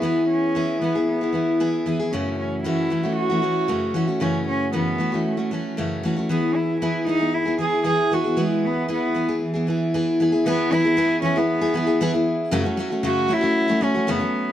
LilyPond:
<<
  \new Staff \with { instrumentName = "Cello" } { \time 4/4 \key e \major \tempo 4 = 115 b8 cis'4 b8 b4. r8 | cis'8 cis'8 e'4 fis'4. r8 | cis'8 cis'8 b4 a4. r8 | b8 e'8 e'8 dis'8 e'8 gis'8 gis'8 fis'8 |
gis8 b8 b4 e4. r8 | b8 e'4 cis'16 b4.~ b16 r8 | r4 fis'8 e'4 cis'8 b8. r16 | }
  \new Staff \with { instrumentName = "Steel-string acoustic guitar" } { \time 4/4 \key e \major <e b e' gis'>4 <e b e' gis'>8 <e b e' gis'>16 <b e' gis'>8 <b e' gis'>16 <e b e' gis'>8 <e b e' gis'>8 <e b e' gis'>16 <b e' gis'>16 | <fis, cis e a cis' fis'>4 <fis, cis e a cis' fis'>8 <e a cis' fis'>16 <e a cis' fis'>8 <e a cis' fis'>16 <e a cis' fis'>8 <fis, cis e a cis' fis'>8 <e a cis' fis'>16 <e a cis' fis'>16 | <fis, cis e a cis' fis'>4 <fis, cis e a cis' fis'>8 <e a cis' fis'>16 <e a cis' fis'>8 <e a cis' fis'>16 <e a cis' fis'>8 <fis, cis e a cis' fis'>8 <e a cis' fis'>16 <e a cis' fis'>16 | <e b e' gis'>4 <e b e' gis'>8 <e b e' gis'>16 <b e' gis'>8 <b e' gis'>16 <e b e' gis'>8 <e b e' gis'>8 <e b e' gis'>16 <b e' gis'>16 |
<e b e' gis'>4 <e b e' gis'>8 <e b e' gis'>16 <b e' gis'>8 <b e' gis'>16 <e b e' gis'>8 <e b e' gis'>8 <e b e' gis'>16 <b e' gis'>16 | <e b e' gis'>8 <e b e' gis'>16 <b e' gis'>16 <e b e' gis'>8 <e b e' gis'>16 <b e' gis'>8 <b e' gis'>16 <e b e' gis'>16 <b e' gis'>16 <e b e' gis'>16 <b e' gis'>8. | <fis, cis fis a cis' fis'>16 <fis a cis' fis'>16 <fis a cis' fis'>16 <fis a cis' fis'>16 <fis, cis fis a cis' fis'>8 <fis a cis' fis'>16 <fis a cis' fis'>8 <fis a cis' fis'>16 <fis a cis' fis'>16 <fis a cis' fis'>16 <fis, cis fis a cis' fis'>16 <fis a cis' fis'>8. | }
>>